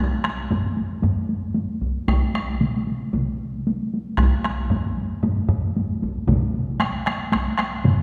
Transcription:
0.15 taiko high
0.24 taiko rim, taiko high
0.40 taiko high
0.51 taiko low-mid, taiko high
0.67 taiko high
0.77 taiko high
0.92 taiko high
1.02 taiko low-mid, taiko high
1.19 taiko high
1.29 taiko high
1.45 taiko high
1.54 taiko high
1.71 taiko high
1.81 taiko, taiko high
2.08 taiko rim, taiko, taiko high
2.25 taiko high
2.34 taiko rim, taiko high
2.50 taiko high
2.61 taiko mid, taiko high
2.77 taiko high
2.87 taiko high
3.03 taiko high
3.13 taiko, taiko mid, taiko high
3.29 taiko high
3.56 taiko high
3.67 taiko high
3.83 taiko high
3.94 taiko high
4.18 taiko rim, taiko, taiko high
4.35 taiko high
4.44 taiko rim, taiko high
4.61 taiko high
4.70 taiko low-mid, taiko high
4.87 taiko high
4.98 taiko high
5.13 taiko high
5.23 taiko low-mid, taiko high
5.40 taiko high
5.49 taiko low-mid
5.66 taiko high
5.76 taiko high
5.92 taiko high
6.02 taiko, taiko high
6.19 taiko high
6.27 taiko, taiko low-mid, taiko mid, taiko high
6.44 taiko high
6.54 taiko high
6.70 taiko high
6.80 taiko rim, taiko high
7.06 taiko rim, taiko high
7.23 taiko high
7.32 taiko rim, taiko, taiko high
7.48 taiko high
7.58 taiko rim, taiko high
7.74 taiko high
7.84 taiko low-mid, taiko mid, taiko high

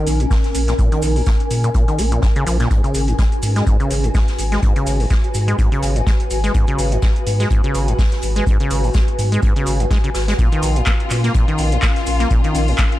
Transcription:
Already playing: D#3 C#4 A#4 G#5
0.07 A#1, closed hi-hat, open hi-hat, maracas
0.20 A#2, closed hi-hat, maracas
0.31 A#3, kick, snare, open hi-hat, maracas
0.44 snare, closed hi-hat, maracas
0.55 A#1, closed hi-hat, open hi-hat, maracas
0.68 A#2, snare, closed hi-hat, maracas
0.79 A#2, kick, closed hi-hat, maracas
0.92 D#3, closed hi-hat, maracas
1.02 A#1, closed hi-hat, open hi-hat, maracas
1.16 A#2, open hi-hat, maracas
1.26 A#3, kick, snare, closed hi-hat, maracas
1.40 closed hi-hat, maracas
1.51 A#2, closed hi-hat, open hi-hat, maracas
1.64 A#2, closed hi-hat, maracas
1.74 A#2, kick, closed hi-hat, maracas
1.88 D#3, closed hi-hat, maracas
1.99 A#1 A#3, closed hi-hat, open hi-hat, maracas
2.12 A#2, closed hi-hat, maracas
2.22 G#2, kick, snare, closed hi-hat, maracas
2.35 C#3, closed hi-hat, maracas
2.47 A#1 F3, closed hi-hat, open hi-hat, maracas
2.60 A#2, snare, closed hi-hat, maracas
2.71 G#2 F#4, kick, closed hi-hat, maracas
2.83 C#3 B4, closed hi-hat, maracas
2.94 G#1, closed hi-hat, open hi-hat, maracas
3.08 G#2, closed hi-hat, maracas
3.18 G#3, kick, snare, closed hi-hat, maracas
3.32 closed hi-hat, maracas
3.42 G#2, closed hi-hat, open hi-hat, maracas
3.56 G#3, snare, closed hi-hat, maracas
3.67 G#2, kick, closed hi-hat, maracas
3.80 C#3, closed hi-hat, maracas
3.90 G#1, closed hi-hat, open hi-hat, maracas
4.04 G#2, closed hi-hat, maracas
4.15 G#3, kick, snare, open hi-hat, maracas
4.28 snare, closed hi-hat, maracas
4.38 G#1, closed hi-hat, open hi-hat, maracas
4.52 G#3, snare, closed hi-hat, maracas
4.62 G#2, kick, closed hi-hat, maracas
4.76 C#3, closed hi-hat, maracas
4.87 G#1, closed hi-hat, open hi-hat, maracas
5.00 G#2, open hi-hat, maracas
5.10 G#3, kick, snare, closed hi-hat, maracas
5.24 closed hi-hat, maracas
5.34 G#2, closed hi-hat, open hi-hat, maracas
5.48 G#3, closed hi-hat, maracas
5.58 G#2, kick, closed hi-hat, maracas
5.72 C#3, closed hi-hat, maracas
5.83 G#1, closed hi-hat, open hi-hat, maracas
5.96 G#2, closed hi-hat, maracas
6.06 G#3, kick, snare, closed hi-hat, maracas
6.20 closed hi-hat, maracas
6.31 G#1, closed hi-hat, open hi-hat, maracas
6.44 G#3, snare, closed hi-hat, maracas
6.54 G#2, kick, closed hi-hat, maracas
6.67 C#3, closed hi-hat, maracas
6.79 G#1, closed hi-hat, open hi-hat, maracas
6.92 G#2, closed hi-hat, maracas
7.02 G#3, kick, snare, closed hi-hat, maracas
7.16 closed hi-hat, maracas
7.27 G#2, closed hi-hat, open hi-hat, maracas
7.40 G#3, snare, closed hi-hat, maracas
7.50 G#2, kick, closed hi-hat, maracas
7.64 C#3, closed hi-hat, maracas
7.74 G#1, closed hi-hat, open hi-hat, maracas
7.88 G#2, closed hi-hat, maracas
7.99 G#3, kick, snare, open hi-hat, maracas
8.12 snare, closed hi-hat, maracas
8.22 G#1, closed hi-hat, open hi-hat, maracas
8.36 G#3, snare, closed hi-hat, maracas
8.47 G#2, kick, closed hi-hat, maracas
8.60 C#3, closed hi-hat, maracas
8.71 G#1, closed hi-hat, open hi-hat, maracas
8.84 G#2, open hi-hat, maracas
8.94 G#3, kick, snare, closed hi-hat, maracas
9.08 closed hi-hat, maracas
9.19 G#2, closed hi-hat, open hi-hat, maracas
9.32 G#3, closed hi-hat, maracas
9.43 G#2, kick, closed hi-hat, maracas
9.56 C#3, closed hi-hat, maracas
9.66 G#1, closed hi-hat, open hi-hat, maracas
9.80 F#2, closed hi-hat, maracas
9.91 G#3, kick, snare, closed hi-hat, maracas
10.04 C#3, closed hi-hat, maracas
10.14 G#1, snare, closed hi-hat, open hi-hat, maracas
10.28 G#3, snare, closed hi-hat, maracas
10.39 A#2 C#4 F4, kick, closed hi-hat, maracas
10.52 D#3, closed hi-hat, maracas
10.63 A#1, closed hi-hat, open hi-hat, maracas
10.76 A#2, closed hi-hat, maracas
10.80 A#4
10.86 A#3, kick, snare, clap, closed hi-hat, maracas
11.00 closed hi-hat, maracas
11.10 A#2, clap, closed hi-hat, open hi-hat, maracas
11.24 A#3, snare, closed hi-hat, maracas
11.34 A#2, kick, closed hi-hat, maracas
11.48 D#3, closed hi-hat, maracas
11.58 A#1, closed hi-hat, open hi-hat, maracas
11.72 A#2, closed hi-hat, maracas
11.82 A#3, kick, snare, clap, open hi-hat, maracas
11.96 snare, closed hi-hat, maracas
12.06 A#1, closed hi-hat, open hi-hat, maracas
12.19 A#3, snare, closed hi-hat, maracas
12.31 A#2, kick, closed hi-hat, maracas
12.44 D#3, closed hi-hat, maracas
12.55 A#1, closed hi-hat, open hi-hat, maracas
12.68 A#2, open hi-hat, maracas
12.78 A#3, kick, snare, clap, closed hi-hat, maracas
12.92 closed hi-hat, maracas

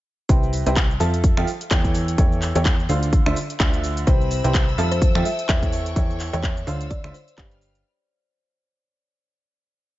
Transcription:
0.29 C2 C3 E4 B4 C5 G5, kick, closed hi-hat, cabasa
0.43 cabasa
0.53 open hi-hat, cabasa
0.66 C2 C3 E4 B4 C5 G5, closed hi-hat, cabasa
0.76 kick, clap, closed hi-hat, cabasa
0.91 cabasa
1.00 F2 F3 F4 A4 E5 A5, open hi-hat, cabasa
1.14 closed hi-hat, cabasa
1.24 kick, closed hi-hat, cabasa
1.37 F2 F3 F4 A4 E5 G5, finger snap, cabasa
1.47 open hi-hat, cabasa
1.61 closed hi-hat, cabasa
1.71 E2 E3 E4 A4 C#5 G5, finger snap, kick, clap, closed hi-hat, cabasa
1.85 kick, closed hi-hat, cabasa
1.95 open hi-hat, cabasa
2.08 closed hi-hat, cabasa
2.18 E2 E3 E4 A4 C#5 G5, kick, closed hi-hat, cabasa
2.32 cabasa
2.42 clap, open hi-hat, cabasa
2.55 E2 E3 E4 A4 C#5 G5, closed hi-hat, cabasa
2.65 kick, clap, closed hi-hat, cabasa
2.79 cabasa
2.89 D2 D3 D4 F4 C5 F5, open hi-hat, cabasa
3.03 closed hi-hat, cabasa
3.13 kick, closed hi-hat, cabasa
3.26 D2 D3 D4 F4 C5 E5, finger snap, cabasa
3.36 open hi-hat, cabasa
3.50 closed hi-hat, cabasa
3.60 D2 D3 D4 F4 C5 E5, finger snap, kick, clap, closed hi-hat, cabasa
3.74 closed hi-hat, cabasa
3.84 open hi-hat, cabasa
3.97 closed hi-hat, cabasa
4.07 C2 C3 C4 E4 B4 C5 G5 B5 E6, kick, closed hi-hat, cabasa
4.21 cabasa
4.31 open hi-hat, cabasa
4.44 C2 C3 E4 B4 C5 G5, closed hi-hat, cabasa
4.54 kick, clap, closed hi-hat, cabasa
4.69 cabasa
4.78 F2 F3 F4 A4 E5 A5, open hi-hat, cabasa
4.91 C5, closed hi-hat, cabasa
5.02 A4 G5, kick, closed hi-hat, cabasa
5.15 F2 F3 F4 A4 E5 G5, finger snap, cabasa
5.25 E5, open hi-hat, cabasa
5.39 closed hi-hat, cabasa
5.49 E2 E3 E4 A4 C#5 E5 G5, finger snap, kick, clap, closed hi-hat, cabasa
5.63 kick, closed hi-hat, cabasa
5.72 A4 C#6, open hi-hat, cabasa
5.86 closed hi-hat, cabasa
5.96 E2 E3 E4 A4 C#5 G5, kick, closed hi-hat, cabasa
6.10 cabasa
6.20 clap, open hi-hat, cabasa
6.33 E2 E3 E4 A4 C#5 G5, closed hi-hat, cabasa
6.43 kick, clap, closed hi-hat, cabasa
6.57 closed hi-hat, cabasa
6.67 D2 D3 D4 F4 C5 F5 E6, open hi-hat, cabasa
6.81 closed hi-hat, cabasa
6.90 D5, kick, closed hi-hat, cabasa
7.04 D2 D3 D4 F4 C5 E5, finger snap, cabasa
7.14 C5, open hi-hat, cabasa
7.28 closed hi-hat, cabasa
7.38 G1 G3 D4 G4 B4 F5 G5 F6, finger snap, kick, clap, closed hi-hat, cabasa
7.51 closed hi-hat, cabasa
7.61 open hi-hat, cabasa
7.75 closed hi-hat, cabasa

